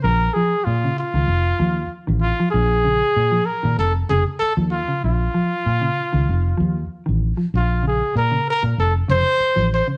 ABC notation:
X:1
M:4/4
L:1/16
Q:1/4=96
K:Bbm
V:1 name="Trumpet"
B2 A2 F2 F6 z2 F2 | A6 B2 =A2 ^G2 A2 F2 | F12 z4 | F2 A2 B2 B2 =A2 c4 c2 |]
V:2 name="Clean electric guitar" clef=bass
z2 F,2 z D,2 E,2 z F,2 z E,2 F, | z2 D,2 z F,2 E,2 z ^C,2 z F,2 C,- | ^C, z F,2 z D,2 E,2 z F,2 z E,2 F, | z2 D,2 z D,2 z3 D,2 z F,2 D, |]
V:3 name="Fingered electric bass" clef=bass
B,,,2 z2 B,,2 z D,, F,,,2 E,,2 z =A,,,2 z | B,,,4 B,,2 z B,, F,,,2 F,,, z2 E,,2 z | B,,,2 z2 B,,2 z D,, F,,,2 E,,2 z =A,,,2 z | B,,,4 B,,2 z B,, F,,,2 F,,, z2 =A,,,2 z |]